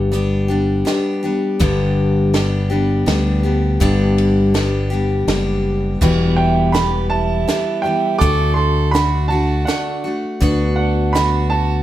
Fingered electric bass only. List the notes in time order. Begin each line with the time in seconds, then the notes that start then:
Already playing: G1
1.61 G1
3.07 D2
3.81 G1
5.27 F#1
6.02 E1
8.21 D2
10.42 D2